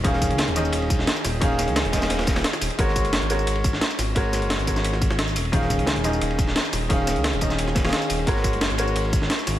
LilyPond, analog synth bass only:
\new Staff \with { instrumentName = "Analog synth bass" } { \clef bass \time 4/4 \key dis \minor \tempo 4 = 175 dis,,8. cis,8 dis,,8. dis,,8. dis,,16 r8 dis,,8 | dis,,8. cis,8 dis,,8. dis,,8. dis,,16 r8 dis,,16 r16 | gis,,8. fis,,8 gis,,8. gis,,8. gis,,16 r8 gis,,8 | gis,,8. fis,,8 gis,,8. gis,,8. gis,,8. dis,,8 |
dis,,8. cis,8 dis,,8. dis,,8. dis,,16 r8 dis,,8 | dis,,8. cis,8 dis,,8. dis,,8. dis,,16 r8 dis,,8 | gis,,8. fis,,8 gis,,8. gis,,8. gis,,16 r8 gis,,8 | }